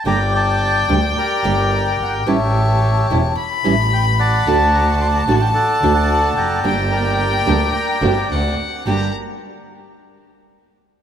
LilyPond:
<<
  \new Staff \with { instrumentName = "Violin" } { \time 4/4 \key g \minor \tempo 4 = 109 g''1 | a''2 b''2 | a''1 | g''2. fis''4 |
bes''8 r2. r8 | }
  \new Staff \with { instrumentName = "Bandoneon" } { \time 4/4 \key g \minor << { bes''8 a''4 g''8 d''4. fis''8 | e''4. r4. g''8 a''8~ | a''8 bes''16 a''16 c'''16 bes''16 a''16 g''16 fis''8. a''8. bes''8~ | bes''8 g''4 a''8 bes''4 r4 |
g''8 r2. r8 | } \\ { <d'' g''>8 d''4. <g' bes'>2 | <g' cis''>2 r4. <d'' fis''>8~ | <d'' fis''>4. r8 <a' d''>8. <d'' fis''>8. <d'' g''>8~ | <d'' g''>8 <bes' d''>4. <d'' g''>4. r8 |
r1 | } >> }
  \new Staff \with { instrumentName = "String section" } { \time 4/4 \key g \minor r1 | r1 | <a d' fis'>4. <a d' fis'>8 r8 <a d' fis'>4. | <bes d' g'>4. <bes d' g'>8 r8 <bes d' g'>8 <c' d' fis'>8 r8 |
<bes d' g'>8 r2. r8 | }
  \new Staff \with { instrumentName = "Nylon-string guitar" } { \time 4/4 \key g \minor <d g bes d' g'>8 r4 <d g bes d' g'>8 r8 <d g bes d' g'>8 r4 | <e g cis' e'>8 r4 <e g cis' e'>8 r8 <e g cis' e'>8 r4 | <d a d' fis'>8 r4 <d a d' fis'>8 r8 <d a d' fis'>8 r4 | <d g bes d' g'>8 r4 <d g bes d' g'>8 r8 <d a c' fis'>8 r4 |
<g, d g bes d' g'>8 r2. r8 | }
  \new Staff \with { instrumentName = "Double bass" } { \clef bass \time 4/4 \key g \minor g,,4. d,8 r8 g,,4 g,,8 | a,,4. e,,8 r8 a,,4. | d,4. a,,8 r8 d,4 f,,8 | g,,4. d,8 r8 g,,8 d,8 r8 |
g,,8 r2. r8 | }
>>